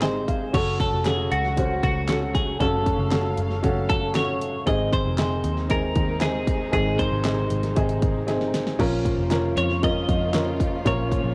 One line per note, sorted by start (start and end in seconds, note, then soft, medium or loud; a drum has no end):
0.00 0.50 G#1 medium
0.00 0.56 G#2 medium
0.00 0.52 C3 medium
0.00 0.52 D#3 medium
0.00 0.56 D#3 medium
0.00 0.50 G#3 medium
0.00 0.56 C4 medium
0.00 0.02 D#4 medium
0.00 0.52 D#4 medium
0.00 0.43 D#4 medium
0.00 0.03 G#4 medium
0.00 0.43 G#4 medium
0.00 0.54 C5 medium
0.00 0.26 G#5 medium
0.00 snare medium
0.00 clap medium
0.00 closed hi-hat medium
0.28 0.52 F5 medium
0.28 kick medium
0.28 closed hi-hat medium
0.53 0.90 F#1 medium
0.53 1.27 C#3 medium
0.53 4.63 C#3 medium
0.53 4.63 F#3 medium
0.53 4.64 A3 medium
0.53 0.94 C#4 medium
0.53 0.95 F#4 medium
0.53 2.59 F#4 medium
0.53 0.95 A4 loud
0.53 0.80 C#5 medium
0.53 kick medium
0.53 closed hi-hat medium
0.53 crash medium
0.80 1.05 A4 medium
0.80 kick medium
0.80 closed hi-hat medium
0.92 1.29 F1 medium
1.05 1.46 C#4 medium
1.05 1.46 F#4 medium
1.05 1.32 G#4 medium
1.05 1.47 A4 medium
1.05 snare medium
1.05 clap medium
1.05 closed hi-hat medium
1.31 1.79 C#2 medium
1.31 1.82 F#4 medium
1.31 closed hi-hat medium
1.44 snare soft
1.56 1.98 C#4 medium
1.56 1.98 F#4 medium
1.56 1.98 C5 medium
1.56 kick medium
1.56 closed hi-hat medium
1.83 2.57 C#2 medium
1.83 2.36 F#4 medium
1.83 kick medium
1.83 closed hi-hat medium
2.08 2.49 C#4 medium
2.08 2.50 F#4 medium
2.08 2.50 A4 medium
2.08 snare loud
2.08 clap medium
2.08 closed hi-hat medium
2.35 2.60 G#4 medium
2.35 kick medium
2.35 closed hi-hat medium
2.60 2.96 F#1 medium
2.60 3.34 C#3 medium
2.60 3.01 C#4 medium
2.60 3.01 F#4 medium
2.60 3.88 A4 medium
2.60 3.02 A4 loud
2.60 4.65 F5 medium
2.60 kick medium
2.60 closed hi-hat medium
2.86 kick medium
2.86 closed hi-hat medium
2.99 3.35 F#1 medium
3.11 3.52 C#4 medium
3.11 3.53 F#4 medium
3.11 3.53 A4 medium
3.11 snare loud
3.11 clap medium
3.11 closed hi-hat medium
3.37 3.62 F#1 medium
3.37 closed hi-hat medium
3.51 snare soft
3.63 4.63 F#1 medium
3.63 4.04 C#4 medium
3.63 4.04 F#4 medium
3.63 4.05 A4 medium
3.63 kick medium
3.63 closed hi-hat medium
3.90 4.15 A4 medium
3.90 kick medium
3.90 closed hi-hat medium
4.14 4.56 C#4 medium
4.14 4.56 F#4 medium
4.14 4.56 A4 medium
4.14 4.63 C#5 medium
4.14 snare loud
4.14 clap medium
4.14 closed hi-hat medium
4.42 closed hi-hat medium
4.66 5.03 G#1 medium
4.66 5.40 G#2 medium
4.66 8.76 C3 medium
4.66 5.40 D#3 medium
4.66 8.76 D#3 medium
4.66 8.76 G#3 medium
4.66 5.07 C4 medium
4.66 5.07 D#4 medium
4.66 8.76 D#4 medium
4.66 5.08 G#4 medium
4.66 4.93 D#5 medium
4.66 kick medium
4.66 closed hi-hat medium
4.93 5.66 C5 loud
4.93 kick medium
4.93 closed hi-hat medium
5.05 5.42 F1 medium
5.17 5.59 C4 medium
5.17 5.59 D#4 medium
5.17 5.59 G#4 medium
5.17 snare medium
5.17 clap medium
5.17 closed hi-hat medium
5.44 5.92 D#2 medium
5.44 closed hi-hat medium
5.57 snare soft
5.69 6.10 C4 medium
5.69 6.11 D#4 medium
5.69 6.11 G#4 medium
5.69 6.22 A#4 medium
5.69 kick medium
5.69 closed hi-hat medium
5.95 6.69 D#2 medium
5.95 kick medium
5.95 closed hi-hat medium
6.21 6.62 C4 medium
6.21 6.62 D#4 medium
6.21 6.72 G#4 medium
6.21 6.63 G#4 medium
6.21 snare loud
6.21 clap medium
6.21 closed hi-hat medium
6.47 kick medium
6.47 closed hi-hat medium
6.72 7.09 G#1 medium
6.72 7.47 G#2 medium
6.72 7.46 D#3 medium
6.72 7.13 C4 medium
6.72 7.14 D#4 medium
6.72 7.00 G#4 medium
6.72 7.14 G#4 loud
6.72 kick medium
6.72 closed hi-hat medium
6.99 7.98 C5 medium
6.99 kick medium
6.99 closed hi-hat medium
7.12 7.48 G#1 medium
7.24 7.65 C4 medium
7.24 7.65 D#4 medium
7.24 7.66 G#4 medium
7.24 snare medium
7.24 clap medium
7.24 closed hi-hat medium
7.50 7.75 G#1 medium
7.50 closed hi-hat medium
7.63 snare soft
7.63 closed hi-hat soft
7.76 8.76 G#1 medium
7.76 8.17 C4 medium
7.76 8.17 D#4 medium
7.76 8.17 G#4 medium
7.76 kick medium
7.76 closed hi-hat medium
7.89 closed hi-hat soft
8.02 kick loud
8.02 closed hi-hat medium
8.27 8.68 C4 medium
8.27 8.68 D#4 medium
8.27 8.69 G#4 medium
8.27 snare soft
8.27 closed hi-hat medium
8.41 snare soft
8.54 snare medium
8.54 closed hi-hat medium
8.67 snare medium
8.79 9.15 A#1 medium
8.79 9.53 A#2 medium
8.79 11.35 C#3 medium
8.79 9.53 F3 medium
8.79 11.35 F3 medium
8.79 11.35 A#3 medium
8.79 9.20 C#4 loud
8.79 9.20 F4 loud
8.79 11.35 F4 medium
8.79 9.21 A#4 loud
8.79 kick medium
8.79 crash medium
9.05 kick medium
9.05 closed hi-hat medium
9.18 9.54 F1 medium
9.31 9.72 C#4 medium
9.31 9.72 F4 medium
9.31 9.72 A#4 medium
9.31 snare medium
9.31 clap medium
9.31 closed hi-hat medium
9.57 10.05 F2 medium
9.57 9.84 C#5 medium
9.57 closed hi-hat medium
9.70 snare soft
9.82 10.23 C#4 medium
9.82 10.23 F4 medium
9.82 10.24 A#4 medium
9.82 10.82 D#5 medium
9.82 kick medium
9.82 closed hi-hat medium
10.09 10.82 F2 medium
10.09 kick medium
10.09 closed hi-hat medium
10.33 10.75 C#4 medium
10.33 10.75 F4 medium
10.33 10.75 A#4 medium
10.33 snare loud
10.33 clap medium
10.33 closed hi-hat medium
10.60 kick medium
10.60 closed hi-hat medium
10.85 11.22 A#1 medium
10.85 11.35 A#2 medium
10.85 11.35 F3 medium
10.85 11.26 C#4 medium
10.85 11.27 F4 medium
10.85 11.27 A#4 medium
10.85 11.35 C#5 medium
10.85 kick medium
10.85 closed hi-hat medium
11.12 kick medium
11.12 closed hi-hat medium
11.24 11.35 A#1 medium